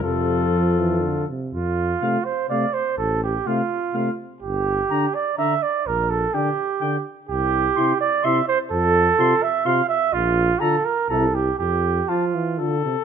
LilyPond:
<<
  \new Staff \with { instrumentName = "Trumpet" } { \time 3/4 \key f \major \tempo 4 = 125 a'2~ a'8 r8 | r4 f''4 f''4 | r4 f''4 f''4 | r4 bes''4 bes''4 |
r4 g''4 g''4 | r4 c'''4 c'''4 | r4 c'''4 c'''4 | r4 bes''4 bes''4 |
r4 a''4 a'4 | }
  \new Staff \with { instrumentName = "Trumpet" } { \time 3/4 \key f \major f'2~ f'8 r8 | f'4. c''8 d''8 c''8 | a'8 g'8 f'4. r8 | g'4. d''8 e''8 d''8 |
bes'8 a'8 g'4. r8 | g'4. d''8 e''8 c''8 | a'4. e''8 f''8 e''8 | f'4 a'8 bes'8 a'8 g'8 |
g'4 f'4 r4 | }
  \new Staff \with { instrumentName = "French horn" } { \time 3/4 \key f \major f2~ f8 r8 | r4 a4 a4 | r4 a4 a4 | r4 d'4 d'4 |
r4 d'4 d'4 | r4 e'4 e'4 | r4 f'4 f'4 | r4 f'4 e'4 |
r4 f'4 f'4 | }
  \new Staff \with { instrumentName = "Trombone" } { \clef bass \time 3/4 \key f \major c4 f8 e8 d8 c8 | r4 c4 c4 | r4 c4 c4 | r4 d4 d4 |
r4 d4 d4 | r4 c4 c4 | r4 c4 c4 | r4 d4 c4 |
r4 f8 e8 d8 c8 | }
  \new Staff \with { instrumentName = "Bass trombone" } { \clef bass \time 3/4 \key f \major f,2~ f,8 r8 | f,4 r2 | a,,4 r2 | g,,4 r2 |
bes,,4 r2 | c,4 r2 | f,4 r2 | bes,,4 r4 c,4 |
f,4 r2 | }
>>